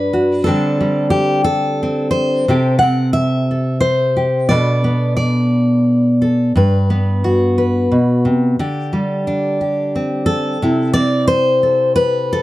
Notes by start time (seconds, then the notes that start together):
Already playing: G2 D4 F#4 B4 D5
0.13 F#4
0.44 D3 G3 C4 A4
0.49 D4
0.81 G3
1.10 G4
1.44 A4
1.83 C4
2.11 C5
2.48 C3 C4 G4 A4
2.79 C4 F#5
3.13 E5
3.51 A4
3.80 C5
4.17 G4
4.49 B2 B3 D4 A4 D5
4.84 B3
5.17 D5
6.22 A4
6.56 G2 B4
6.90 B3
7.24 F#4
7.58 B4
7.92 B2
8.25 C3
8.59 D3 G4
8.93 G3
9.27 D4
9.61 G4
9.95 C4
10.26 A4
10.62 C3 E4
10.94 C4 D5
11.27 C5
11.63 A4
11.96 B4
12.33 A4